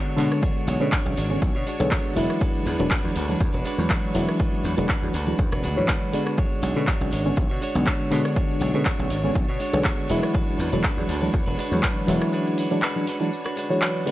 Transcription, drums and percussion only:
0.07 tambourine
0.18 open hi-hat, tambourine, shaker
0.32 cross-stick, tambourine, shaker
0.43 kick, tambourine, shaker
0.56 tambourine, shaker
0.67 open hi-hat, tambourine, shaker
0.82 tambourine, shaker
0.92 kick, clap, tambourine, shaker
1.06 tambourine
1.17 open hi-hat, tambourine, shaker
1.30 tambourine, shaker
1.42 kick, tambourine, shaker
1.56 tambourine
1.67 open hi-hat, tambourine, shaker
1.80 tambourine, shaker
1.91 kick, clap, tambourine, shaker
2.05 tambourine
2.16 open hi-hat, tambourine, shaker
2.30 cross-stick, tambourine, shaker
2.41 kick, tambourine, shaker
2.55 tambourine, shaker
2.66 open hi-hat, tambourine, shaker
2.79 tambourine, shaker
2.91 kick, clap, tambourine, shaker
3.04 tambourine
3.16 open hi-hat, tambourine, shaker
3.29 tambourine, shaker
3.40 kick, tambourine, shaker
3.54 tambourine
3.64 open hi-hat, tambourine, shaker
3.78 tambourine, shaker
3.89 kick, clap, tambourine, shaker
4.03 tambourine
4.13 open hi-hat, tambourine, shaker
4.27 cross-stick, tambourine, shaker
4.39 kick, tambourine, shaker
4.52 tambourine, shaker
4.63 open hi-hat, tambourine, shaker
4.78 tambourine, shaker
4.89 kick, clap, tambourine, shaker
5.03 tambourine, shaker
5.13 open hi-hat, tambourine, shaker
5.27 tambourine, shaker
5.38 kick, tambourine, shaker
5.52 cross-stick, tambourine
5.64 open hi-hat, tambourine, shaker
5.77 tambourine, shaker
5.88 kick, clap, tambourine, shaker
6.02 tambourine, shaker
6.13 open hi-hat, tambourine, shaker
6.26 cross-stick, tambourine, shaker
6.37 kick, tambourine, shaker
6.50 tambourine, shaker
6.62 open hi-hat, tambourine, shaker
6.75 tambourine, shaker
6.87 kick, clap, tambourine, shaker
7.01 tambourine
7.11 open hi-hat, tambourine, shaker
7.25 tambourine, shaker
7.36 kick, tambourine, shaker
7.50 tambourine
7.62 open hi-hat, tambourine, shaker
7.76 shaker
7.86 kick, clap, tambourine, shaker
7.99 tambourine
8.10 open hi-hat, tambourine, shaker
8.25 cross-stick, tambourine, shaker
8.36 kick, tambourine, shaker
8.50 tambourine, shaker
8.61 open hi-hat, tambourine, shaker
8.74 tambourine, shaker
8.85 kick, clap, tambourine, shaker
8.98 tambourine
9.10 open hi-hat, tambourine, shaker
9.24 tambourine, shaker
9.35 kick, tambourine, shaker
9.49 tambourine
9.60 open hi-hat, tambourine, shaker
9.74 tambourine, shaker
9.84 kick, clap, tambourine, shaker
9.98 tambourine
10.10 open hi-hat, tambourine, shaker
10.23 cross-stick, tambourine, shaker
10.35 kick, tambourine, shaker
10.48 tambourine, shaker
10.60 open hi-hat, tambourine, shaker
10.73 tambourine, shaker
10.84 kick, clap, tambourine, shaker
10.98 tambourine
11.09 open hi-hat, tambourine, shaker
11.23 tambourine, shaker
11.34 kick, tambourine, shaker
11.48 tambourine
11.59 open hi-hat, tambourine, shaker
11.72 tambourine, shaker
11.83 kick, clap, tambourine, shaker
11.96 tambourine
12.08 open hi-hat, tambourine, shaker
12.22 cross-stick, tambourine, shaker
12.33 tambourine, shaker
12.46 tambourine, shaker
12.58 open hi-hat, tambourine, shaker
12.72 tambourine, shaker
12.82 clap, tambourine, shaker
12.97 tambourine
13.07 open hi-hat, tambourine, shaker
13.22 tambourine, shaker
13.33 tambourine, shaker
13.46 cross-stick, tambourine
13.57 open hi-hat, tambourine, shaker
13.71 tambourine, shaker
13.82 clap, tambourine, shaker
13.96 tambourine, shaker
14.07 open hi-hat, tambourine, shaker

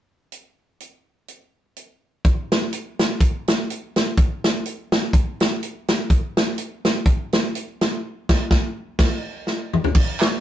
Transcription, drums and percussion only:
0.32 closed hi-hat
0.80 closed hi-hat
1.28 closed hi-hat
1.76 closed hi-hat
2.25 kick, closed hi-hat
2.52 snare, closed hi-hat
2.73 closed hi-hat
2.99 snare, closed hi-hat
3.20 kick, closed hi-hat
3.48 snare, closed hi-hat
3.70 closed hi-hat
3.96 snare, closed hi-hat
4.17 kick, closed hi-hat
4.44 snare, closed hi-hat
4.66 closed hi-hat
4.92 snare, closed hi-hat
5.13 kick, closed hi-hat
5.40 snare, closed hi-hat
5.63 closed hi-hat
5.88 snare, closed hi-hat
6.10 kick, closed hi-hat
6.37 snare, closed hi-hat
6.58 closed hi-hat
6.85 snare, closed hi-hat
7.06 kick, closed hi-hat
7.33 snare, closed hi-hat
7.55 closed hi-hat
7.81 snare, closed hi-hat
8.29 kick, snare, crash
8.51 kick, snare
8.99 kick, snare, crash
9.47 snare
9.73 mid tom
9.84 floor tom
9.95 kick, crash
10.20 snare, clap, closed hi-hat

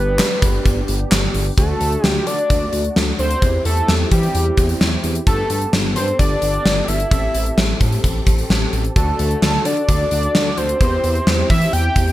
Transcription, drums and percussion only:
0.19 snare, clap, closed hi-hat
0.42 kick, closed hi-hat
0.65 kick, closed hi-hat
0.88 closed hi-hat
1.12 snare, clap, closed hi-hat
1.34 open hi-hat
1.58 kick, closed hi-hat
1.81 closed hi-hat
1.92 closed hi-hat
2.04 snare
2.27 closed hi-hat
2.38 closed hi-hat
2.50 kick, closed hi-hat
2.73 closed hi-hat
2.84 closed hi-hat
2.96 snare
3.19 closed hi-hat
3.31 closed hi-hat
3.42 kick, closed hi-hat
3.65 closed hi-hat
3.77 closed hi-hat
3.88 snare
4.11 kick, closed hi-hat
4.23 closed hi-hat
4.35 closed hi-hat
4.57 kick, closed hi-hat
4.69 closed hi-hat
4.81 snare
5.04 closed hi-hat
5.15 closed hi-hat
5.27 kick, closed hi-hat
5.50 closed hi-hat
5.61 closed hi-hat
5.73 snare
5.96 closed hi-hat
6.08 closed hi-hat
6.19 kick, closed hi-hat
6.42 closed hi-hat
6.54 closed hi-hat
6.66 snare
6.88 closed hi-hat
7.00 closed hi-hat
7.11 kick, closed hi-hat
7.34 closed hi-hat
7.46 closed hi-hat
7.58 snare
7.81 kick, closed hi-hat
7.92 closed hi-hat
8.04 kick, closed hi-hat
8.27 kick, closed hi-hat
8.38 closed hi-hat
8.50 snare
8.73 closed hi-hat
8.84 closed hi-hat
8.96 kick, closed hi-hat
9.19 closed hi-hat
9.31 closed hi-hat
9.42 snare
9.65 closed hi-hat
9.77 closed hi-hat
9.89 kick, closed hi-hat
10.11 closed hi-hat
10.23 closed hi-hat
10.35 snare
10.58 closed hi-hat
10.69 closed hi-hat
10.81 kick, closed hi-hat
11.04 closed hi-hat
11.15 closed hi-hat
11.27 snare
11.50 kick, open hi-hat
11.62 closed hi-hat
11.73 closed hi-hat
11.96 kick, closed hi-hat
12.07 closed hi-hat

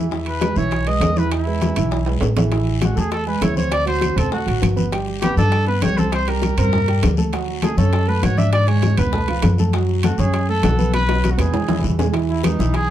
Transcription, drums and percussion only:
0.11 high bongo, high conga, long guiro
0.26 high bongo, high conga, high timbale
0.41 high bongo, high conga, high timbale, low timbale, short guiro
0.56 high bongo, high conga, short guiro
0.71 high bongo, high conga, high timbale, long guiro
0.87 high bongo, high conga, high timbale
1.01 high bongo, low bongo, high conga, high timbale, low timbale, short guiro
1.16 high conga, short guiro
1.31 high bongo, high conga, high timbale, long guiro
1.47 high bongo, high conga
1.61 high bongo, high conga, high timbale, low timbale, short guiro
1.76 high bongo, high timbale, short guiro
1.91 high bongo, high conga, high timbale, long guiro
2.06 high bongo, high conga, high timbale
2.21 high bongo, low bongo, high conga, low timbale, short guiro
2.37 high conga, low timbale, short guiro
2.52 high bongo, high conga, high timbale, long guiro
2.67 high bongo, high conga
2.82 high bongo, high conga, high timbale, short guiro
2.97 high conga, short guiro
3.11 high bongo, high conga, high timbale, long guiro
3.27 high bongo, high conga
3.42 high bongo, low bongo, high conga, high timbale, low timbale, short guiro
3.57 high bongo, high conga, short guiro
3.72 high bongo, high conga, high timbale, long guiro
3.87 high bongo, high conga, high timbale
4.01 high bongo, high conga, high timbale, short guiro
4.18 low conga, high timbale, short guiro
4.32 high bongo, high conga, long guiro
4.47 high bongo, high conga, high timbale
4.62 high bongo, low bongo, high conga, high timbale, short guiro
4.77 high bongo, high conga, short guiro
4.92 high bongo, high conga, high timbale, long guiro
5.07 high bongo, high conga
5.22 high bongo, high conga, high timbale, short guiro
5.37 high conga, short guiro
5.52 high bongo, high conga, high timbale, long guiro
5.67 high bongo, high conga
5.82 high bongo, low bongo, high conga, high timbale, low timbale, short guiro
5.98 high bongo, high conga, short guiro
6.12 high bongo, high conga, high timbale, long guiro
6.28 high bongo, high conga, high timbale
6.42 high bongo, high conga, high timbale, short guiro
6.58 low conga, high timbale, short guiro
6.73 high bongo, high conga, low conga, long guiro
6.88 high bongo, high conga, high timbale
7.02 high bongo, low bongo, high conga, high timbale, low timbale, short guiro
7.17 high bongo, high conga, short guiro
7.33 high bongo, high timbale, long guiro
7.48 high bongo, high conga
7.62 high bongo, high conga, high timbale, short guiro
7.78 high conga, short guiro
7.93 high bongo, high timbale, long guiro
8.08 high bongo, high conga
8.22 high bongo, low bongo, high conga, high timbale, short guiro
8.37 high bongo, high conga, short guiro
8.53 high bongo, high timbale, long guiro
8.67 high bongo, high timbale
8.82 high bongo, high conga, high timbale, short guiro
8.97 low conga, high timbale, short guiro
9.13 high bongo, high conga, low conga, long guiro
9.28 high bongo, high conga, high timbale
9.42 high bongo, low bongo, high conga, high timbale, low timbale, short guiro
9.58 high bongo, high conga, short guiro
9.73 high bongo, high conga, high timbale, long guiro
9.89 high bongo, high conga
10.03 high bongo, high conga, high timbale, short guiro
10.18 high conga, short guiro
10.33 high bongo, high conga, high timbale, long guiro
10.49 high bongo, high conga
10.63 high bongo, low bongo, high conga, high timbale, low timbale, short guiro
10.79 high bongo, high conga, short guiro
10.93 high bongo, high timbale, long guiro
11.09 high bongo, high conga, high timbale
11.24 high bongo, high conga, high timbale, short guiro
11.39 high bongo, low conga, high timbale, short guiro
11.54 low bongo, high conga, low conga, high timbale, long guiro
11.69 low bongo, high conga, high timbale
11.79 low conga
11.84 short guiro
11.89 low conga
11.99 low bongo, low conga, low timbale, short guiro
12.14 high bongo, high conga, high timbale, long guiro
12.29 high bongo, high conga
12.44 high bongo, high conga, high timbale, short guiro
12.60 high conga, short guiro
12.74 high bongo, high conga, high timbale, long guiro

